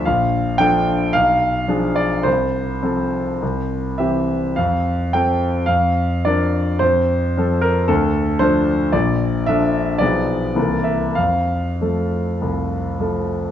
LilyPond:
<<
  \new Staff \with { instrumentName = "Grand piano" } { \time 4/4 \key f \major \tempo 4 = 108 f''4 g''4 f''4. d''8 | c''2. e''4 | f''4 g''4 f''4 d''4 | c''4. bes'8 a'4 c''4 |
d''4 e''4 d''4. e''8 | f''2. r4 | }
  \new Staff \with { instrumentName = "Grand piano" } { \clef bass \time 4/4 \key f \major bes,,4 <f d' a'>4 b,,4 <f d' gis'>4 | c,4 <f c' a'>4 c,4 <e c' g'>4 | f,4 <f c' a'>4 f,4 <f d' bes'>4 | f,4 <f c' a'>4 d,4 <f d' a'>4 |
bes,,4 <f d' a'>4 <b,, f b gis'>4 <c, e bes a'>4 | f,4 <f a a'>4 c,4 <f a a'>4 | }
>>